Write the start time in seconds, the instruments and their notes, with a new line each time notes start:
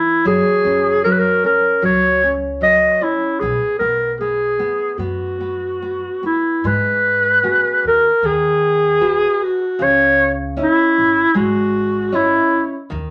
Already playing: nylon-string guitar B3, clarinet E4
0.25 upright bass F#2, nylon-string guitar F#3, clarinet G#4
0.65 upright bass F#2, nylon-string guitar C#4
1.04 nylon-string guitar F#3, clarinet A#4
1.12 clarinet B4
1.19 clarinet A#4
1.44 nylon-string guitar C#4, clarinet A#4
1.82 upright bass C#2, nylon-string guitar F#3, clarinet C#5
2.24 nylon-string guitar C#4
2.61 nylon-string guitar F#3, clarinet D#5
3.02 nylon-string guitar C#4, clarinet E4
3.39 upright bass B1, nylon-string guitar B3, clarinet G#4
3.79 upright bass B1, nylon-string guitar B3, clarinet A#4
4.21 nylon-string guitar B3, clarinet G#4
4.59 nylon-string guitar B3
4.94 clarinet G#4
4.98 upright bass F#2, nylon-string guitar B3, clarinet F#4
5.40 nylon-string guitar B3
5.82 nylon-string guitar B3
6.23 nylon-string guitar B3, clarinet E4
6.64 upright bass G#2, nylon-string guitar G#3, clarinet B4
7.43 nylon-string guitar B3 F#4 G#4
7.84 upright bass D#2, clarinet A#4
8.22 upright bass D#2, nylon-string guitar D#3, clarinet G#4
9.01 nylon-string guitar F#4 G#4 B4
9.44 clarinet F#4
9.79 upright bass C#2, nylon-string guitar C#3
9.83 clarinet C#5
10.57 nylon-string guitar C#4 E4 D#5
10.61 clarinet E4
10.98 upright bass G#1
11.35 upright bass G#1, nylon-string guitar G#3, clarinet F#4
12.12 nylon-string guitar C#4 E4 D#5, clarinet E4
12.90 upright bass D#2, nylon-string guitar D#3